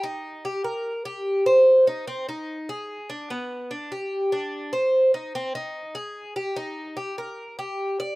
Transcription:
X:1
M:4/4
L:1/8
Q:1/4=147
K:Ablyd
V:1 name="Cuban tres"
E2 G B2 G2 c- | c E C E2 A2 D | =B,2 D G2 D2 c- | c E C E2 A2 G |
E2 G B2 G2 d |]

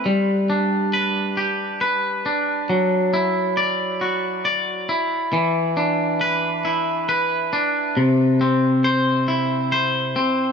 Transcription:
X:1
M:6/8
L:1/8
Q:3/8=46
K:G
V:1 name="Clean electric guitar"
G, D B G B D | F, E d F d E | E, D B E B D | C, C c E c C |]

